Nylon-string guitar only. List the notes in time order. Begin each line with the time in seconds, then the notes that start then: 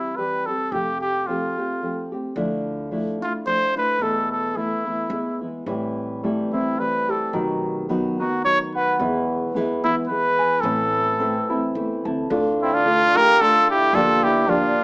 Already playing: G3 C4 G4
0.17 E3 G3 C4 G4
0.47 G3 C4 G4
0.73 F3 A3 C4 G4
1.28 F3 A3 C4 G4
1.58 A3 C4 G4
1.83 F3 A3 C4 G4
2.12 A3 C4 G4
2.36 D3 F3 A3 D4 E4
2.91 F3 A3 D4 E4
3.21 A3 D4 E4
3.46 F3 A3 D4 E4
3.76 A3 D4 E4
4.01 E2 B2 E3 A3 B3 E4
4.55 E3 A3 B3 E4
4.85 E3 A3 B3 E4
5.11 E3 G#3 B3 E4
5.41 E3 G#3 B3 E4
5.66 A2 E3 G3 C4 E4
6.23 E3 G3 C4 E4
6.53 G3 C4 E4
6.78 E3 G3 C4 E4
7.33 B2 F#3 B3 D#4 F#4
7.89 F#3 B3 D#4 F#4
8.19 B3 D#4 F#4
8.44 F#3 B3 D#4 F#4
9.00 E2 B2 E3 G#3 B3 E4
9.55 E3 G#3 B3 E4
9.84 E3 G#3 B3 E4
10.10 E3 G#3 B3 E4
10.64 A2 E3 A3 C4 E4
11.20 E3 A3 C4 E4
11.50 A3 C4 E4
11.75 E3 A3 C4 E4
12.06 A3 C4 E4
12.30 D3 A3 D4 F4
12.86 D3 A3 D4 F4
13.15 A3 D4 F4
13.40 D3 A3 D4 F4
13.94 G2 D3 F3 A#3 D4 G4
14.47 F3 A#3 D4 G4